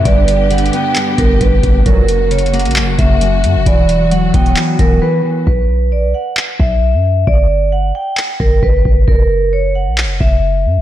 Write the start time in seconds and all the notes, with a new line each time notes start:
Already playing: D3 B3
0.05 G1 G2 G4 D5, kick, closed hi-hat
0.28 closed hi-hat
0.51 D3 F#5, closed hi-hat
0.58 closed hi-hat
0.66 closed hi-hat
0.73 B3 G5, closed hi-hat
0.96 G2, clap, closed hi-hat
1.18 G1 G2 A#4, kick, closed hi-hat
1.41 G1 G2 B4, kick, closed hi-hat
1.63 G1 G2, kick, closed hi-hat
1.86 F#1 C#2 F#2 A#2 C#3 F#3 A#3 F#4 A#4, kick, closed hi-hat
2.08 closed hi-hat
2.31 C#3 C#5, closed hi-hat
2.38 closed hi-hat
2.46 closed hi-hat
2.53 A#3 F#5, closed hi-hat
2.59 closed hi-hat
2.65 A#1, closed hi-hat
2.71 closed hi-hat
2.76 F#2, clap, closed hi-hat
2.82 F#1
2.99 F#1 F#2 E5, kick, closed hi-hat
3.21 F#2, closed hi-hat
3.44 F#2, closed hi-hat
3.56 F#1
3.66 E1 E3 F#3 D5, kick, closed hi-hat
3.89 closed hi-hat
4.11 F#3 F#5, closed hi-hat
4.34 E1 B3 G5, kick, closed hi-hat
4.46 closed hi-hat
4.57 E3, clap, closed hi-hat
4.79 E1 E3 A#4, kick, closed hi-hat
5.02 E3 B4
5.24 E3
5.47 B1 B4, kick
5.92 A#1 D5
6.04 B1
6.14 F#5
6.37 clap
6.60 B1 E5, kick
6.94 F#2
7.27 G1 D5, kick
7.72 F#5
7.95 G5
8.17 clap
8.40 G1 A#4, kick
8.63 G1 B4, kick
8.85 G1, kick
9.08 F#1 A#4, kick
9.53 C#5
9.75 F#5
9.87 A#1
9.98 clap
10.04 F#1
10.20 F#1 E5, kick
10.66 F#2
10.78 F#1